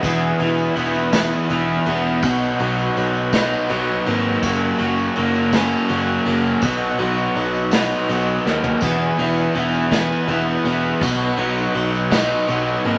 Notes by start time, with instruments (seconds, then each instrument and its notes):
0.02 picked electric bass E1, overdriven electric guitar E2 E3 B3 E4 G#4, kick, crash, tambourine
0.38 picked electric bass E1, overdriven electric guitar E3 B3 E4 G#4, ride
0.58 tambourine
0.74 picked electric bass E1, overdriven electric guitar E3 B3 E4 G#4, ride, tambourine
0.94 tambourine
1.12 overdriven electric guitar E3 B3 E4 G#4, kick, snare, ride, tambourine
1.31 tambourine
1.49 picked electric bass E1, overdriven electric guitar E3 B3 E4 G#4, ride, tambourine
1.86 picked electric bass E1, overdriven electric guitar B3, ride
2.22 picked electric bass B1, overdriven electric guitar B2 F#3 B3 D#4 F#4, kick, ride, tambourine
2.59 picked electric bass B1, overdriven electric guitar F#3 B3 D#4 F#4, ride
2.79 tambourine
2.95 picked electric bass B1, overdriven electric guitar F#3 B3 D#4 F#4, ride, tambourine
3.15 tambourine
3.32 overdriven electric guitar F#3 B3 D#4 F#4, kick, snare, ride, tambourine
3.51 tambourine
3.69 picked electric bass B1, overdriven electric guitar F#3 B3 D#4 F#4, ride, tambourine
4.06 picked electric bass G#1, overdriven electric guitar A#3, ride
4.42 picked electric bass F#1, overdriven electric guitar F#3 A#3 C#4 F#4, kick, tambourine, crash
4.79 picked electric bass F#1, overdriven electric guitar F#3 A#3 C#4 F#4, ride
4.98 tambourine
5.15 picked electric bass F#1, overdriven electric guitar F#3 A#3 C#4 F#4, ride, tambourine
5.35 tambourine
5.52 overdriven electric guitar F#3 A#3 C#4 F#4, kick, snare, ride, tambourine
5.71 tambourine
5.88 picked electric bass F#1, overdriven electric guitar F#3 A#3 C#4 F#4, ride, tambourine
6.26 picked electric bass F#1, overdriven electric guitar A#3, ride
6.61 picked electric bass B1, overdriven electric guitar B2 F#3 B3 D#4 F#4, kick, ride, tambourine
6.98 picked electric bass B1, overdriven electric guitar F#3 B3 D#4 F#4, ride
7.18 tambourine
7.35 picked electric bass B1, overdriven electric guitar F#3 B3 D#4 F#4, ride
7.54 tambourine
7.71 overdriven electric guitar F#3 B3 D#4 F#4, snare, ride, tambourine
7.91 tambourine
8.09 picked electric bass B1, overdriven electric guitar F#3 B3 D#4 F#4, ride
8.45 picked electric bass D#2, overdriven electric guitar A#3, snare, tambourine
8.63 floor tom, tambourine
8.81 picked electric bass E1, overdriven electric guitar E2 E3 B3 E4 G#4, kick, crash, tambourine
9.18 picked electric bass E1, overdriven electric guitar E3 B3 E4 G#4, ride
9.37 tambourine
9.54 picked electric bass E1, overdriven electric guitar E3 B3 E4 G#4, ride, tambourine
9.74 tambourine
9.91 overdriven electric guitar E3 B3 E4 G#4, kick, snare, ride, tambourine
10.12 tambourine
10.28 picked electric bass E1, overdriven electric guitar E3 B3 E4 G#4, ride, tambourine
10.64 picked electric bass E1, overdriven electric guitar B3, ride
11.00 picked electric bass B1, overdriven electric guitar B2 F#3 B3 D#4 F#4, kick, ride, tambourine
11.37 picked electric bass B1, overdriven electric guitar F#3 B3 D#4 F#4, ride
11.58 tambourine
11.73 picked electric bass B1, overdriven electric guitar F#3 B3 D#4 F#4, ride, tambourine
11.95 tambourine
12.10 overdriven electric guitar F#3 B3 D#4 F#4, kick, snare, ride, tambourine
12.32 tambourine
12.48 picked electric bass B1, overdriven electric guitar F#3 B3 D#4 F#4, ride, tambourine
12.84 picked electric bass G#1, overdriven electric guitar A#3, ride